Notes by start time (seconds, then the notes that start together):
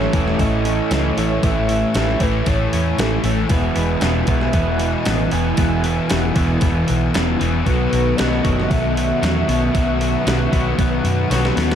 Already playing: A2 E3 A3 C#4 E4 C#5 G#5
0.02 snare
0.13 E1 A2 E3 A3, kick, open hi-hat
0.28 snare
0.39 A1 A2 E3 A3 D#5, kick, open hi-hat
0.65 E3 A3 C#4, open hi-hat
0.91 C#2 A2 E3 A3, snare, open hi-hat
1.17 A1 A2 E3 A3 C#5, open hi-hat
1.42 A1 A2 E3 A3 E5, kick, open hi-hat
1.69 E3 A3, open hi-hat
1.94 A1 A2 E3 A3, snare, open hi-hat
2.09 snare
2.20 A1 A2 E3 A3 B4, kick, open hi-hat
2.45 A1 A2 E3 A3 C#5, kick, open hi-hat
2.72 E2 E3 A3 C#4, open hi-hat
2.98 A1 A2 E3 A3 A4, snare, open hi-hat
3.24 A1 A2 E3 A3, open hi-hat
3.49 E1 E2 B2 E3 G#3 B3 E4 B4, kick, open hi-hat
3.75 E1 B2 E3 B3, open hi-hat
4.01 E1 E2 B2 E3 B3, snare, open hi-hat
4.27 B1 E2 B2 E3 B3 E5, kick, open hi-hat
4.41 snare
4.52 E1 E2 B2 E3 B3 E5, kick, open hi-hat
4.79 B2 E3, open hi-hat
4.93 D#5
5.05 A1 E2 B2 E3 B3, snare, open hi-hat
5.31 E1 E2 B2 E3 B3 G#5, open hi-hat
5.57 E1 E2 B2 E3 B3 E5, kick, open hi-hat
5.83 B2 E3 B3, open hi-hat
6.09 E1 E2 B2 E3 B3, snare, open hi-hat
6.35 E1 E2 B2 E3 B3, kick, open hi-hat
6.61 E1 E2 B2 E3 B3, kick, open hi-hat
6.87 B1 B2 E3, open hi-hat
7.13 E1 E2 B2 E3 B3, snare, open hi-hat
7.39 E1 E2 B2 E3 B3, open hi-hat
7.66 B1 B2 D#3 F#3 A3 B3 F#4 A4 B4 F#5, kick, open hi-hat
7.92 B1 F#3 B3, open hi-hat
8.17 B1 B2 F#3 D#5, snare, open hi-hat
8.21 B3
8.33 snare
8.43 F#1 B2 F#3 B3, kick, open hi-hat
8.60 snare
8.69 B1 B2 F#3 B3 E5, kick, open hi-hat
8.97 F#3 B3, open hi-hat
9.22 E2 B2 F#3 B3, snare, open hi-hat
9.48 B1 B2 F#3 B3, open hi-hat
9.73 B1 B2 F#3 B3 B4, kick, open hi-hat
9.98 F#3 B3, open hi-hat
10.25 B1 B2 F#3 B3, snare, open hi-hat
10.51 B1 B2 F#3 B3, kick, open hi-hat
10.77 B1 B2 F#3 B3, kick, open hi-hat
11.03 F#2 F#3 B3, open hi-hat
11.29 B1 B2 F#3 B3, snare, open hi-hat
11.45 snare
11.55 D#2 B2 F#3 B3, snare, open hi-hat
11.72 snare